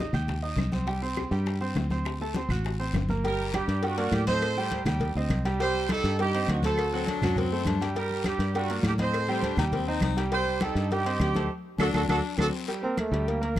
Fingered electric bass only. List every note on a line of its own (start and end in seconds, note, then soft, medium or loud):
0.13 0.55 D#2 loud
0.56 1.26 C2 loud
1.31 1.73 G2 loud
1.76 2.44 D2 medium
2.49 2.90 A1 loud
2.93 3.62 G1 loud
3.68 4.09 G2 loud
4.12 4.80 A2 loud
4.86 5.13 D#2 loud
5.15 5.29 D2 medium
5.30 5.98 C2 medium
6.04 6.45 G2 loud
6.48 7.17 D2 loud
7.22 7.63 F#2 medium
7.65 8.34 G2 medium
8.39 8.81 G2 medium
8.83 9.52 A2 loud
9.57 9.99 D#2 medium
10.02 10.70 C2 medium
10.75 11.17 G2 loud
11.20 11.48 D2 loud
11.79 11.90 D2 loud
11.94 12.05 D2 medium
12.09 12.20 D2 loud
12.38 12.49 D2 loud
13.12 13.53 D2 loud
13.55 13.60 A1 medium